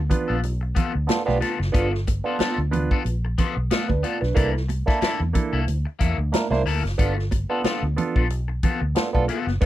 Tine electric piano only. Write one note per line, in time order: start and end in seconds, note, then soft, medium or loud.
0.10 0.35 B3 loud
0.10 0.35 D4 medium
0.10 0.35 F4 medium
0.10 0.35 B4 loud
0.42 0.51 F4 soft
0.42 0.52 G4 soft
1.07 1.21 B3 loud
1.07 1.21 D4 medium
1.07 1.22 F4 medium
1.07 1.22 A4 loud
1.26 1.37 B3 loud
1.26 1.37 D4 loud
1.26 1.37 F4 loud
1.26 1.38 G4 loud
1.40 1.50 F4 soft
1.40 1.50 A4 soft
1.72 1.86 B3 loud
1.72 1.87 D4 loud
1.72 1.87 F4 loud
1.72 1.87 A4 loud
2.24 2.60 B3 medium
2.24 2.60 D4 medium
2.24 2.60 F4 medium
2.24 2.60 A4 loud
2.71 2.97 B3 medium
2.71 2.97 D4 medium
2.71 2.97 F4 medium
2.71 2.97 B4 loud
3.06 3.14 B4 soft
3.89 4.03 D4 medium
3.89 4.03 B4 medium
4.03 4.21 F4 medium
4.03 4.21 D5 medium
4.21 4.34 D4 medium
4.21 4.53 B4 medium
4.34 4.49 A#3 loud
4.34 4.49 D4 loud
4.34 4.49 E4 loud
4.34 4.49 A4 loud
4.53 4.61 E4 soft
4.53 4.62 A4 soft
4.86 5.22 A#3 medium
4.86 5.22 D4 medium
4.86 5.22 E4 medium
4.86 5.23 A4 loud
5.33 5.59 A#3 loud
5.33 5.59 D4 medium
5.33 5.59 E4 medium
5.33 5.59 A4 loud
5.66 5.76 E4 soft
5.66 5.76 C5 soft
6.32 6.46 A#3 medium
6.32 6.46 D4 medium
6.32 6.46 E4 medium
6.32 6.47 A#4 loud
6.50 6.61 A#3 loud
6.50 6.62 D4 loud
6.50 6.62 E4 loud
6.50 6.62 C5 loud
6.65 6.75 E4 soft
6.98 7.12 B3 loud
6.98 7.12 D4 loud
6.98 7.12 F4 medium
6.98 7.12 A4 loud
7.17 7.24 F4 soft
7.17 7.25 A4 soft
7.50 7.85 B3 loud
7.50 7.85 D4 medium
7.50 7.85 F4 medium
7.50 7.86 A4 medium
7.96 8.21 B3 loud
7.96 8.22 D4 medium
7.96 8.22 F4 medium
7.96 8.22 A4 loud
8.95 9.08 B3 medium
8.95 9.09 D4 medium
8.95 9.09 F4 medium
8.95 9.09 A4 loud
9.13 9.24 B3 loud
9.13 9.24 D4 loud
9.13 9.25 F4 loud
9.13 9.25 A4 loud
9.28 9.37 F4 soft
9.28 9.38 A4 soft
9.61 9.66 B3 loud
9.61 9.66 D4 loud
9.61 9.66 F4 loud
9.61 9.66 A4 loud